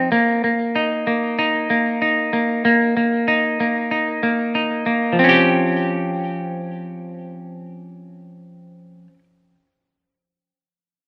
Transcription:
Already playing: F3 C4 D#4
0.12 A#3
0.44 A#3
0.76 D#4
1.07 A#3
1.39 D#4
1.70 A#3
2.02 D#4
2.33 A#3
2.65 A#3
2.97 A#3
3.28 D#4
3.60 A#3
3.91 D#4
4.23 A#3
4.55 D#4
4.86 A#3
5.13 F3
5.19 C4
5.24 C#4
5.29 G4

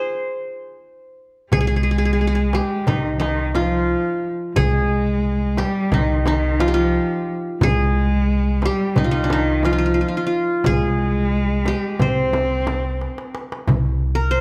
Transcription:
Already playing: F4 G#4 C5
1.52 C2 G#3 G#4, frame drum, darbuka dum
1.61 G#4
1.67 G#4
1.76 G#4
1.83 G#4
1.91 G#4
1.98 G#4
2.05 G#4
2.13 G#4
2.20 G#4, darbuka ka
2.27 G#4
2.35 G#4
2.53 G4, darbuka tek, frame drum
2.87 C2 D#3 D#4, darbuka dum, frame drum
3.15 F3
3.20 D#3 D#4, darbuka tek, frame drum
3.55 F3 F4, darbuka tek, frame drum
3.89 darbuka ka
4.55 C2 G#3 G#4, frame drum, darbuka dum
5.25 darbuka ka
5.57 G3 G4, darbuka tek, frame drum
5.92 C2 D#3 D#4, frame drum, darbuka dum
6.26 D#3 D#4, darbuka tek, frame drum
6.60 F3 F4, darbuka tek, frame drum
6.68 G4
6.74 F3 F4
6.94 darbuka ka
7.61 C2 G#3 G#4, darbuka dum, frame drum
8.28 darbuka ka
8.62 G3 G4, darbuka tek, frame drum
8.96 C2 D#3 D#4, darbuka dum, frame drum
9.04 F4
9.09 D#3 D#4
9.24 D4
9.29 D#3 D#4, darbuka tek, frame drum
9.63 F3 F4, darbuka tek, frame drum
9.73 F4
9.78 F4
9.86 F4
9.94 F4
10.01 F4
10.08 F4
10.17 F4
10.27 F4
10.64 C2 G#3 G#4, frame drum, darbuka dum
11.32 darbuka ka
11.66 G4, darbuka tek, frame drum
11.99 C2 C4 C5, frame drum, darbuka dum
12.33 darbuka tek, frame drum
12.67 darbuka tek, frame drum
13.01 darbuka tek
13.18 darbuka ka
13.35 darbuka tek
13.52 darbuka ka
13.68 C2, frame drum, darbuka dum
14.15 A#4
14.31 C5

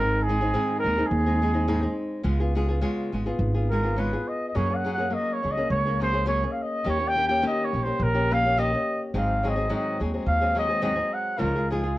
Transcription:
Already playing: G#1 G#2 D#3 G#3 C4 D#4 G#4 A#4
0.22 G#4
0.29 G#3 C4 D#4 G#4
0.41 G#3 C4 D#4 G#4
0.54 G#2 D#3 G#3 C4 D#4 G#4
0.79 A#4
0.84 D#2 G#3 C4 D#4 G#4
0.98 G#3 C4 D#4 G#4
1.06 G#4
1.11 D#2
1.26 G#3 C4 D#4 G#4
1.42 G#3 C4 D#4 G#4
1.54 G#3 C4 D#4 G#4
1.68 G#2 D#3 G#3 C4 D#4 G#4
1.82 G#3 C4 D#4 G#4
2.24 C#2 C#3 G#3 B3 F4 G#4
2.40 B3 F4 G#4
2.55 G#3 B3 F4 G#4
2.69 B3 F4 G#4
2.81 C#3 G#3 B3 F4 G#4
3.12 G#1 G#3 B3 F4 G#4
3.26 B3 F4 G#4
3.39 G#1
3.55 B3 F4 G#4
3.70 G#3 B3 F4 G#4 A#4
3.83 B3 F4 G#4
3.96 C#3 G#3 B3 F4 G#4 B4
4.13 B3 F4 G#4
4.28 D#5
4.48 D#5
4.54 F#2 F#3 A#3 C#4 G#4 C#5
4.70 A#3 C#4 G#4
4.75 F#5
4.84 F#3 A#3 C#4 G#4
4.93 F#5
4.98 A#3 C#4 G#4
5.10 F#3 A#3 C#4 G#4 D#5
5.33 C#5
5.42 C#2 F#3 A#3 C#4 G#4
5.51 D#5
5.57 A#3 C#4 G#4
5.70 C#2 C#5
5.85 A#3 C#4 G#4
6.00 F#3 A#3 C#4 G#4 C5
6.13 A#3 C#4 G#4
6.26 F#3 A#3 C#4 G#4 C#5
6.43 A#3 C#4 G#4
6.52 F5
6.62 D#5
6.84 D#2 D#3 A#3 C#4 G4
6.89 C#5
6.99 A#3 C#4 G4
7.08 G5
7.15 D#3 A#3 C#4 G4
7.27 A#3 C#4 G4 G5
7.42 D#3 A#3 C#4 G4
7.47 D#5
7.64 C#5
7.73 A#1 D#3 A#3 C#4 G4
7.83 A#3 C#4 G4 C5
8.00 A#1 A#4
8.14 A#3 C#4 G4
8.31 D#3 A#3 C#4 G4 F5
8.45 A#3 C#4 G4
8.57 D#3 A#3 C#4 G4 D#5
8.74 A#3 C#4
9.14 G#1 G#2 D#3 F#3 G#3 C4 G#4 F5
9.43 F#3 G#3 C4 G#4
9.48 D#5
9.56 F#3 G#3 C4 G#4
9.69 G#2 D#3 F#3 G#3 C4 G#4
9.75 D#5
10.00 D#2 F#3 G#3 C4 G#4
10.14 F#3 G#3 C4 G#4
10.26 D#2 F5
10.41 F#3 G#3 C4 G#4
10.55 F#3 G#3 C4 G#4 D#5
10.69 F#3 G#3 C4 G#4
10.82 G#2 D#3 F#3 G#3 C4 G#4 D#5
10.96 F#3 G#3 C4 G#4
11.14 F#5
11.38 C#2 C#3 F3 G#3 F4 G#4 A#4
11.55 G#3 F4 G#4
11.70 F3 G#3 F4 G#4
11.83 G#3 F4 G#4

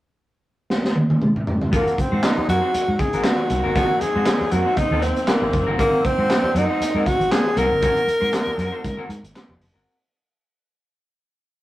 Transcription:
0.70 snare
0.85 snare
0.96 high tom
1.10 high tom
1.22 mid tom
1.36 mid tom
1.47 floor tom
1.62 floor tom
1.71 G#1 D#3 F#3 A#3 C4 F#4 A#4, kick, closed hi-hat
1.75 A#3
1.87 closed hi-hat
1.97 C4, muted hollow-body jazz guitar stroke, muted fingered electric bass stroke, kick, closed hi-hat
2.12 G#2 C4 F#4 C5
2.23 D#4, snare, clap, closed hi-hat
2.37 muted hollow-body jazz guitar stroke, muted fingered electric bass stroke
2.48 F#2 C4 F#4 A#4, closed hi-hat
2.62 C4 F#4 C5
2.72 muted hollow-body jazz guitar stroke, muted fingered electric bass stroke, closed hi-hat
2.88 G#2, muted hollow-body jazz guitar stroke
2.99 G#4, kick, closed hi-hat
3.13 G#1 C4 F#4 A#4, closed hi-hat
3.24 F#4, muted hollow-body jazz guitar stroke, snare, clap, closed hi-hat
3.40 muted hollow-body jazz guitar stroke
3.50 C2, closed hi-hat
3.64 G1 C4 F#4 A#4
3.75 G#1 C4 F#4 A#4, kick, closed hi-hat
4.01 G#4, muted fingered electric bass stroke, muted hollow-body jazz guitar stroke, closed hi-hat
4.15 G#2 C4 F#4 C5
4.26 muted hollow-body jazz guitar stroke, snare, clap, closed hi-hat
4.41 muted hollow-body jazz guitar stroke, muted fingered electric bass stroke
4.52 F#2 C4 F#4 A#4, closed hi-hat
4.66 C4 F#4 C5
4.77 D#4, muted fingered electric bass stroke, kick, closed hi-hat
4.91 D#2 C4 F#4 A#4
5.02 C4, muted hollow-body jazz guitar stroke, closed hi-hat
5.16 muted hollow-body jazz guitar stroke, closed hi-hat
5.27 A#3, muted hollow-body jazz guitar stroke, snare, clap, closed hi-hat
5.42 G#1, muted hollow-body jazz guitar stroke
5.53 F#1, kick, closed hi-hat
5.67 G1 C4 F#4 A#4
5.78 G#1 A#3 C4 F#4 A#4, kick, closed hi-hat
6.05 C4, muted hollow-body jazz guitar stroke, muted fingered electric bass stroke, kick, closed hi-hat
6.18 G#2 C4 F#4 C5
6.30 muted hollow-body jazz guitar stroke, snare, clap, closed hi-hat
6.43 muted fingered electric bass stroke, muted hollow-body jazz guitar stroke
6.55 F#2 C4 D#4 F#4 A#4, closed hi-hat
6.70 C4 F#4 C5
6.81 muted fingered electric bass stroke, muted hollow-body jazz guitar stroke, closed hi-hat
6.95 G#2 C4 F#4 A#4
7.06 F#4, muted hollow-body jazz guitar stroke, kick, closed hi-hat
7.20 G#1, muted hollow-body jazz guitar stroke, closed hi-hat
7.31 G#4, muted hollow-body jazz guitar stroke, snare, clap, closed hi-hat
7.45 muted hollow-body jazz guitar stroke
7.56 C2 C4 F#4 A#4, closed hi-hat
7.71 G1, muted hollow-body jazz guitar stroke
7.82 G#1 C4 F#4 A#4, kick, closed hi-hat
7.97 closed hi-hat
8.07 muted hollow-body jazz guitar stroke, muted fingered electric bass stroke, closed hi-hat
8.21 G#2 C4 F#4 C5
8.33 snare, clap, closed hi-hat
8.47 muted hollow-body jazz guitar stroke, muted fingered electric bass stroke
8.58 F#2 C4 F#4 A#4, closed hi-hat
8.72 C4 F#4 C5
8.84 G#2, muted hollow-body jazz guitar stroke, kick, closed hi-hat
8.97 C4 F#4 A#4
9.09 G#2, muted hollow-body jazz guitar stroke, closed hi-hat
9.23 G#1, muted hollow-body jazz guitar stroke, closed hi-hat
9.34 muted hollow-body jazz guitar stroke, snare, clap, closed hi-hat
9.49 F1, muted hollow-body jazz guitar stroke
9.60 F#1, open hi-hat
9.74 G1 C4 F#4 A#4

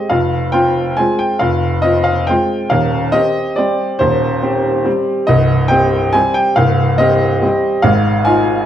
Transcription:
0.10 F1 F2 F5
0.52 C4 F4 G5
0.97 G#3 C4 F4 G#5
1.19 G5
1.39 F1 F2 F5
1.82 C4 F4 D#5
2.04 F5
2.27 G#3 C4 F4 G5
2.70 D#1 D#2 F5
3.12 C4 G4 D#5
3.56 G3 C4 G4 D5
3.99 D#1 D#2 C5
4.42 C4 G4
4.85 G3 C4 G4
5.27 C1 C2 D#5
5.68 C4 G4 G5
6.13 G3 C4 G4 G#5
6.34 G5
6.56 C1 C2 F5
6.98 C4 G4 D#5
7.42 G3 C4 G4
7.82 G#1 G#2 F5
8.25 D#4 F4 G#5

